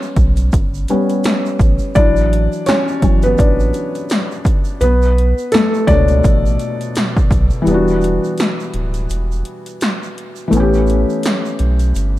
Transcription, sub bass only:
0.16 0.50 B1 medium
0.53 0.86 G1 medium
1.60 1.79 A1 loud
1.96 2.48 A1 loud
3.02 3.36 G1 loud
3.39 3.72 A1 loud
4.81 5.34 B1 loud
5.88 6.21 C#2 medium
6.24 6.57 A1 loud
7.31 7.50 B1 medium
7.67 8.19 E1 loud
8.74 9.07 D1 medium
9.10 9.43 E1 loud
10.52 11.05 A1 loud
11.60 11.93 B1 medium
11.95 12.19 G1 medium

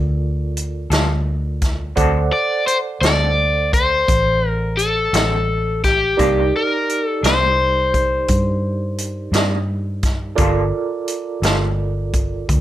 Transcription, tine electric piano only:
0.00 1.92 F4 medium
0.00 1.92 A4 medium
0.00 1.92 A#4 soft
0.00 1.92 D5 medium
1.96 6.14 A4 medium
1.96 6.14 C5 soft
1.96 6.14 D5 medium
1.96 6.14 F#5 medium
6.17 10.34 D#4 soft
6.17 10.34 G4 soft
6.17 10.34 A#4 soft
6.17 10.34 D5 medium
10.36 12.61 F4 medium
10.36 12.61 A4 soft
10.36 12.61 A#4 medium
10.36 12.61 D5 medium

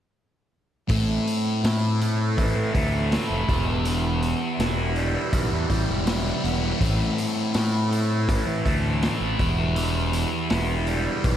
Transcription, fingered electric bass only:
0.89 1.17 A1 medium
1.64 2.40 A2 medium
2.38 2.52 A1 medium
2.56 2.70 A2 medium
2.75 3.16 D2 medium
3.30 3.44 F1 medium
3.49 4.33 E1 medium
4.59 5.15 E1 medium
5.33 5.47 B1 medium
5.52 5.66 E2 medium
5.70 5.84 A1 medium
5.89 6.30 E1 medium
6.44 6.72 E1 medium
6.81 7.09 A1 loud
7.55 8.30 A2 medium
8.29 8.43 A1 medium
8.47 8.61 A2 medium
8.66 9.07 D2 medium
9.21 9.35 A1 medium
9.40 10.24 E1 medium
10.51 11.06 E1 medium
11.24 11.37 B1 medium

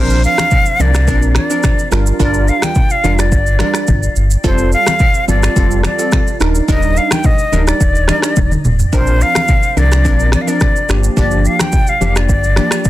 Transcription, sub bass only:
0.00 0.27 A#1 loud
0.80 1.09 C2 medium
1.08 1.39 A#1 medium
1.92 2.12 G1 loud
2.20 2.51 G1 loud
3.04 3.33 F1 medium
3.32 3.63 G1 loud
3.88 4.09 G1 medium
4.16 4.37 G1 loud
4.44 4.75 F1 loud
5.28 5.49 G1 medium
5.56 5.87 F1 loud
6.40 6.61 D#1 loud
6.68 6.99 D#1 loud
7.52 7.73 D1 medium
7.81 8.12 D#1 loud
8.37 8.57 D#1 loud
8.65 8.85 D#1 medium
8.93 9.24 A#1 loud
9.77 10.06 C2 loud
10.05 10.36 A#1 medium
10.89 11.09 G1 loud
11.17 11.48 G1 loud
12.01 12.31 F1 medium
12.29 12.60 G1 loud
12.85 12.90 G1 medium

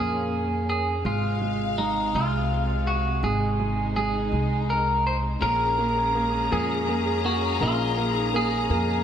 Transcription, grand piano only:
0.00 1.07 A#3 soft
1.05 1.40 G#3 soft
1.41 1.77 G#3 soft
1.78 2.13 G#3 soft
2.15 3.22 G#3 soft
3.24 3.58 G#3 soft
3.60 3.95 G#3 soft
3.96 4.31 G#3 soft
4.33 5.39 G#3 soft
5.42 5.77 A#3 soft
5.78 6.14 A#3 soft
6.15 6.50 A#3 soft
6.52 6.87 A#3 soft
6.89 7.24 A#3 soft
7.25 7.60 A#3 soft
7.61 7.96 A#3 medium
7.97 8.32 A#3 soft
8.34 8.69 A#3 medium
8.71 9.04 A#3 medium

